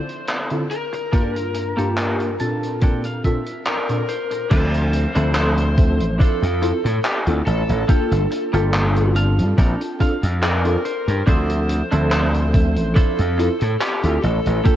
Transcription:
Already playing: lead electric guitar C5
0.09 closed hi-hat
0.27 clap, closed hi-hat
0.50 synth keys D3 C4 E4 F4 A4, closed hi-hat
0.71 lead electric guitar A#4, closed hi-hat
0.93 muted clean electric guitar stroke, closed hi-hat
1.12 synth keys G2 A#3 D4 F4 A#4, clean electric guitar A#3 F4 G4 A4, kick, closed hi-hat
1.36 closed hi-hat
1.55 muted clean electric guitar stroke, closed hi-hat
1.77 synth keys G2 A#3 D4 F4 G4, clean electric guitar A#3 F4 G4 A4, closed hi-hat
1.98 clap, closed hi-hat
2.20 closed hi-hat
2.40 synth keys A#2 C4 D4 F4 A4, clean electric guitar A5, closed hi-hat
2.63 closed hi-hat
2.81 clean electric guitar A#3 C4 D4 A4 G5, kick, closed hi-hat
3.04 clean electric guitar F5, closed hi-hat
3.24 synth keys A#2 C4 D4 F4 A4, clean electric guitar E5, muted clean electric guitar stroke, kick, closed hi-hat
3.46 closed hi-hat
3.65 lead electric guitar A#4, clean electric guitar D5, clap, closed hi-hat
3.89 synth keys A#2 C4 D4 F4 A4, closed hi-hat
4.08 clean electric guitar C5, closed hi-hat
4.31 muted clean electric guitar stroke, closed hi-hat
4.50 slap bass D2, synth keys F3 C4 A4 E5, clean electric guitar D4 E4 F4 C5, lead electric guitar C5, kick, closed hi-hat, crash
4.74 closed hi-hat
4.92 muted clean electric guitar stroke, closed hi-hat
5.15 slap bass D2, synth keys F3 C4 A4 E5, clean electric guitar D4 E4 F4 C5, closed hi-hat
5.34 lead electric guitar C5, clap, closed hi-hat
5.57 closed hi-hat
5.77 synth keys F3 C4 A4 E5, muted clean electric guitar stroke, kick, closed hi-hat
6.00 slap bass A1, closed hi-hat
6.19 clean electric guitar D4 E4 F4 C5, lead electric guitar A4, muted slap bass stroke, kick, closed hi-hat
6.42 slap bass F2, closed hi-hat
6.61 synth keys C4 E4 F4 A4, muted clean electric guitar stroke, closed hi-hat
6.84 slap bass A2, muted clean electric guitar stroke, closed hi-hat
7.05 lead electric guitar G4, clap, closed hi-hat
7.26 slap bass D2, synth keys C4 E4 F4 A4, closed hi-hat
7.46 slap bass A1, lead electric guitar A4, closed hi-hat
7.69 slap bass A1, closed hi-hat
7.88 synth keys A#3 D4 F4 A4, clean electric guitar A#3 F4 G4 A4, kick, closed hi-hat
8.11 slap bass G1, closed hi-hat
8.31 muted clean electric guitar stroke, closed hi-hat
8.53 slap bass G1, synth keys A#3 D4 F4 A4, clean electric guitar A#3 F4 G4 A4, closed hi-hat
8.73 clap, closed hi-hat
8.96 closed hi-hat
9.15 synth keys C4 D4 F4 A5, clean electric guitar F5, muted clean electric guitar stroke, closed hi-hat
9.38 slap bass G2, closed hi-hat
9.58 slap bass A#1, clean electric guitar C4 D4 A4 A#4 G5, kick, closed hi-hat
9.81 closed hi-hat
9.99 synth keys C4 D4 F4 A4, clean electric guitar F5, muted clean electric guitar stroke, kick, closed hi-hat
10.22 slap bass F2, muted clean electric guitar stroke, closed hi-hat
10.43 lead electric guitar A#4, clean electric guitar D5, clap, closed hi-hat
10.64 synth keys C4 D4 F4 A4, closed hi-hat
10.85 clean electric guitar C5, closed hi-hat
11.08 slap bass G2, closed hi-hat
11.26 slap bass D2, synth keys F3 C4 A4 E5, clean electric guitar D4 E4 F4 C5, lead electric guitar C5, kick, closed hi-hat
11.49 closed hi-hat
11.69 muted clean electric guitar stroke, closed hi-hat
11.91 slap bass D2, synth keys F3 C4 A4 E5, clean electric guitar D4 E4 F4 C5, closed hi-hat
12.10 lead electric guitar C5, clap, closed hi-hat
12.34 closed hi-hat
12.53 synth keys F3 C4 A4 E5, muted clean electric guitar stroke, kick, closed hi-hat
12.76 slap bass A1, closed hi-hat
12.95 clean electric guitar D4 E4 F4 C5, lead electric guitar A4, muted slap bass stroke, kick, closed hi-hat
13.18 slap bass F2, closed hi-hat
13.38 synth keys C4 E4 F4 A4, muted clean electric guitar stroke, closed hi-hat
13.60 slap bass A2, muted clean electric guitar stroke, closed hi-hat
13.80 lead electric guitar G4, clap, closed hi-hat
14.03 slap bass D2, synth keys C4 E4 F4 A4, closed hi-hat
14.22 slap bass A1, lead electric guitar A4, closed hi-hat
14.46 slap bass A1, closed hi-hat
14.64 clean electric guitar A#3 F4 G4 A4, synth keys A#3 D4 F4 A4, kick, closed hi-hat

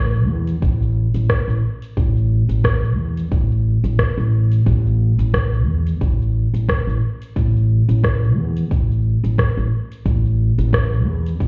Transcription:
Already playing: upright bass A1
0.15 shaker
0.29 upright bass E2
0.47 closed hi-hat, shaker
0.62 upright bass A1, kick, closed hi-hat, shaker
0.82 shaker
1.14 upright bass A1, closed hi-hat, shaker
1.30 kick, cross-stick, closed hi-hat, shaker
1.48 upright bass A1, shaker
1.82 closed hi-hat, shaker
1.97 upright bass A1, kick, closed hi-hat, shaker
2.17 shaker
2.49 upright bass A1, closed hi-hat, shaker
2.64 kick, cross-stick, closed hi-hat, shaker
2.84 shaker
2.98 upright bass E2
3.17 closed hi-hat, shaker
3.32 upright bass A1, kick, closed hi-hat, shaker
3.51 shaker
3.84 upright bass A1, closed hi-hat, shaker
3.99 kick, cross-stick, closed hi-hat, shaker
4.18 upright bass A1, shaker
4.52 closed hi-hat, shaker
4.66 upright bass A1, kick, closed hi-hat, shaker
4.86 shaker
5.19 upright bass A1, closed hi-hat, shaker
5.34 kick, cross-stick, closed hi-hat, shaker
5.53 shaker
5.67 upright bass E2
5.87 closed hi-hat, shaker
6.01 upright bass A1, kick, closed hi-hat, shaker
6.21 shaker
6.54 upright bass A1, closed hi-hat, shaker
6.69 kick, cross-stick, closed hi-hat, shaker
6.87 upright bass A1, shaker
7.22 closed hi-hat, shaker
7.36 upright bass A1, kick, closed hi-hat, shaker
7.56 shaker
7.89 upright bass A1, closed hi-hat, shaker
8.04 kick, cross-stick, closed hi-hat, shaker
8.24 shaker
8.37 upright bass E2
8.57 closed hi-hat, shaker
8.71 upright bass A1, kick, closed hi-hat, shaker
8.91 shaker
9.24 upright bass A1, closed hi-hat, shaker
9.38 kick, cross-stick, closed hi-hat, shaker
9.57 upright bass A1, shaker
9.92 closed hi-hat, shaker
10.05 upright bass A1, kick, closed hi-hat, shaker
10.26 shaker
10.58 upright bass A1, closed hi-hat, shaker
10.73 kick, cross-stick, closed hi-hat, shaker
10.93 shaker
11.07 upright bass E2
11.26 closed hi-hat, shaker
11.40 upright bass A1, kick, closed hi-hat, shaker

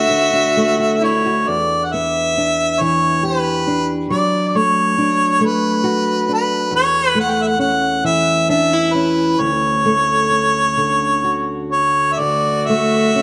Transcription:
Already playing: steel-string acoustic guitar A3 D4 F#4, fiddle F#4, harmonica E5
0.10 steel-string acoustic guitar D2
0.33 steel-string acoustic guitar D4
0.57 steel-string acoustic guitar A3
0.80 steel-string acoustic guitar F#4
1.01 steel-string acoustic guitar D4, fiddle E4, harmonica C#5
1.26 steel-string acoustic guitar F#4
1.48 steel-string acoustic guitar E2, harmonica D5
1.85 harmonica F#5
1.92 steel-string acoustic guitar B3, harmonica E5
2.38 steel-string acoustic guitar D4
2.81 steel-string acoustic guitar E3, harmonica C#5
3.23 steel-string acoustic guitar G4, harmonica B4
3.67 steel-string acoustic guitar D4
4.10 steel-string acoustic guitar F#3, harmonica D5
4.48 harmonica D5
4.55 steel-string acoustic guitar A3, harmonica C#5
4.98 steel-string acoustic guitar D4
5.41 steel-string acoustic guitar A3
5.46 harmonica B4
5.84 steel-string acoustic guitar F#4
6.29 steel-string acoustic guitar D4
6.33 harmonica B4
6.71 steel-string acoustic guitar E2
6.75 harmonica C#5
7.15 steel-string acoustic guitar A3
7.20 harmonica F#5
7.28 harmonica F#5 G5
7.42 harmonica E5
7.47 harmonica F#5
7.59 steel-string acoustic guitar C#4, harmonica F#5
8.04 steel-string acoustic guitar E3, harmonica E5
8.49 steel-string acoustic guitar D4, harmonica E5
8.73 steel-string acoustic guitar E4
8.94 steel-string acoustic guitar C#4, harmonica B4
9.39 steel-string acoustic guitar D2, harmonica C#5
9.85 steel-string acoustic guitar A3
10.30 steel-string acoustic guitar C#4
10.77 steel-string acoustic guitar D3
11.24 steel-string acoustic guitar F#4
11.72 harmonica C#5
12.13 harmonica E5
12.18 steel-string acoustic guitar D2, fiddle F#4, harmonica D5
12.67 steel-string acoustic guitar A3, harmonica E5
13.15 steel-string acoustic guitar C#4

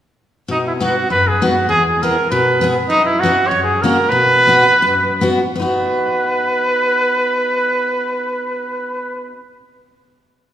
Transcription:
0.48 steel-string acoustic guitar B2, trumpet D#4
0.67 trumpet E4
0.80 steel-string acoustic guitar B3 D#4 F#4, trumpet F#4
1.10 steel-string acoustic guitar F#2, trumpet B4
1.28 trumpet G#4
1.42 steel-string acoustic guitar B3 D#4 F#4, trumpet F#4
1.69 steel-string acoustic guitar E2, trumpet G#4
1.86 trumpet G#4
2.02 steel-string acoustic guitar B3 E4 G#4, trumpet A#4
2.31 steel-string acoustic guitar B2, trumpet B4
2.61 steel-string acoustic guitar B3 E4 G#4
2.89 steel-string acoustic guitar F#2, trumpet D#4
3.06 trumpet E4
3.19 trumpet F#4
3.23 steel-string acoustic guitar B3 C#4 F#4
3.48 steel-string acoustic guitar F#2, trumpet C#5
3.63 trumpet G#4
3.82 steel-string acoustic guitar A#3 C#4 F#4, trumpet A#4
4.09 steel-string acoustic guitar B2, trumpet B4
4.47 steel-string acoustic guitar B3 D#4 F#4
4.82 steel-string acoustic guitar F#2
5.21 steel-string acoustic guitar B3 D#4 F#4
5.56 steel-string acoustic guitar B3 D#4
5.60 steel-string acoustic guitar F#4, trumpet B4

